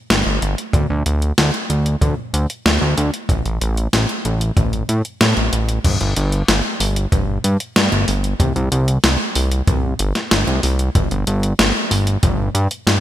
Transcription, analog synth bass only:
0.10 0.23 G1 loud
0.26 0.39 G1 medium
0.42 0.55 G1 medium
0.73 0.87 D2 loud
0.90 1.03 D2 loud
1.06 1.32 D2 medium
1.38 1.51 D2 loud
1.70 1.96 D2 medium
2.01 2.15 D2 medium
2.34 2.47 D2 medium
2.66 2.79 D2 loud
2.81 2.95 D2 loud
2.98 3.11 D2 medium
3.29 3.42 A1 loud
3.45 3.58 A1 loud
3.61 3.88 A1 loud
3.93 4.06 A1 loud
4.25 4.51 A1 medium
4.57 4.83 A1 loud
4.89 5.02 A2 medium
5.21 5.34 A2 medium
5.37 5.50 A1 medium
5.53 5.79 A1 medium
5.84 5.98 G1 loud
6.01 6.14 G1 loud
6.17 6.43 G1 loud
6.48 6.62 G1 loud
6.80 7.07 G1 medium
7.12 7.39 G1 medium
7.44 7.57 G2 medium
7.76 7.89 G2 medium
7.92 8.05 G1 medium
8.08 8.34 G1 medium
8.40 8.53 C2 loud
8.56 8.69 C2 loud
8.72 8.98 C2 loud
9.04 9.17 C2 loud
9.36 9.62 C2 medium
9.67 9.94 C2 loud
9.99 10.13 G1 medium
10.31 10.45 G1 medium
10.47 10.60 C2 medium
10.63 10.90 C2 medium
10.95 11.08 G1 loud
11.11 11.24 G1 loud
11.27 11.54 G1 loud
11.59 11.72 G1 loud
11.91 12.17 G1 medium
12.23 12.49 G1 loud
12.55 12.68 G2 medium
12.87 13.00 G2 medium

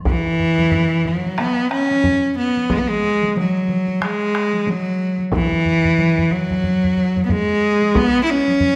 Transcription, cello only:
0.07 1.09 E3 medium
1.07 1.41 F#3 medium
1.39 1.72 B3 medium
1.72 2.33 C#4 medium
2.38 2.73 B3 medium
2.72 2.80 G#3 medium
2.79 2.90 B3 medium
2.89 3.37 G#3 medium
3.39 4.05 F#3 medium
4.04 4.71 G#3 medium
4.69 5.21 F#3 medium
5.34 6.33 E3 medium
6.31 7.24 F#3 medium
7.25 7.33 B3 medium
7.32 7.97 G#3 medium
7.96 8.23 B3 loud
8.24 8.31 E4 medium
8.30 8.76 C#4 medium

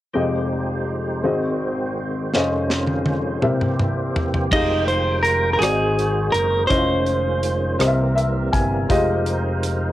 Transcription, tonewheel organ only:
0.14 1.22 F3 soft
0.14 3.39 G#3 soft
0.14 1.22 D#4 soft
0.14 1.22 G4 soft
0.14 4.48 C5 soft
1.23 3.40 D#3 soft
1.23 2.32 C4 soft
1.23 2.32 F#4 soft
2.34 3.42 F2 soft
2.34 3.42 C#4 soft
2.34 3.42 F4 soft
3.43 4.51 E3 soft
3.43 4.51 A#3 soft
3.43 4.51 C4 soft
3.43 4.51 G4 soft
4.54 7.78 D#3 soft
4.54 7.78 G#3 soft
4.54 5.62 F4 soft
4.54 7.78 C5 soft
4.54 5.62 G5 medium
5.61 6.70 F#4 soft
5.61 6.70 G#4 medium
6.72 7.80 C#4 soft
6.72 7.80 F4 medium
7.79 8.88 E3 medium
7.79 8.88 G3 soft
7.79 8.88 A#3 soft
7.79 8.88 C4 medium
7.79 9.92 A#4 medium
8.89 9.92 F3 medium
8.89 9.92 G#3 soft
8.89 9.92 D#4 soft
8.89 9.92 C5 soft

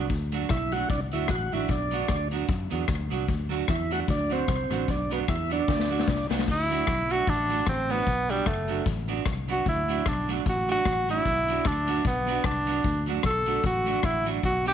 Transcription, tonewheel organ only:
0.50 0.73 E4 medium
0.72 0.89 F#4 loud
0.90 1.00 D4 medium
1.13 1.31 E4 medium
1.30 1.53 F#4 medium
1.53 1.71 E4 medium
1.71 2.28 D4 medium
3.70 3.92 E4 medium
3.92 4.00 F#4 loud
4.10 4.32 D4 loud
4.33 4.91 C4 loud
4.90 5.12 D4 medium
5.12 5.20 B3 medium
5.29 5.52 E4 medium
5.53 6.27 D4 loud

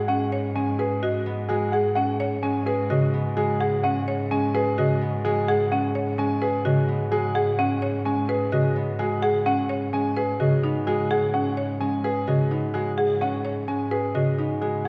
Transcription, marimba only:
0.00 0.16 G#4 medium
0.09 0.39 C#4 medium
0.33 0.63 C#5 medium
0.56 0.86 C#4 medium
0.79 1.10 B4 medium
1.03 1.33 F#4 medium
1.49 1.80 F#4 medium
1.73 2.03 G#4 medium
1.96 2.27 C#4 medium
2.20 2.50 C#5 medium
2.43 2.74 C#4 medium
2.67 2.97 B4 medium
2.90 3.21 F#4 medium
3.37 3.67 F#4 medium
3.61 3.91 G#4 medium
3.84 4.14 C#4 medium
4.08 4.38 C#5 medium
4.31 4.61 C#4 medium
4.54 4.85 B4 medium
4.78 5.08 F#4 medium
5.25 5.55 F#4 medium
5.48 5.78 G#4 medium
5.72 6.02 C#4 medium
5.95 6.25 C#5 medium
6.18 6.49 C#4 medium
6.42 6.72 B4 medium
6.65 6.96 F#4 medium
7.12 7.42 F#4 medium
7.35 7.66 G#4 medium
7.59 7.89 C#4 medium
7.82 8.13 C#5 medium
8.06 8.36 C#4 medium
8.29 8.60 B4 medium
8.53 8.83 F#4 medium
8.99 9.30 F#4 medium
9.23 9.53 G#4 loud
9.46 9.77 C#4 medium
9.69 10.00 C#5 medium
9.93 10.24 C#4 medium
10.16 10.47 B4 medium
10.40 10.70 F#4 medium
10.64 10.94 D#4 medium
10.87 11.17 F#4 medium
11.10 11.41 G#4 medium
11.34 11.64 C#4 medium
11.57 11.88 C#5 medium
11.81 12.11 C#4 medium
12.04 12.35 B4 medium
12.28 12.58 F#4 medium
12.51 12.82 D#4 medium
12.74 13.05 F#4 medium
12.98 13.28 G#4 medium
13.21 13.52 C#4 medium
13.45 13.75 C#5 medium
13.68 13.99 C#4 medium
13.92 14.22 B4 medium
14.15 14.46 F#4 medium
14.38 14.69 D#4 medium
14.62 14.88 F#4 medium

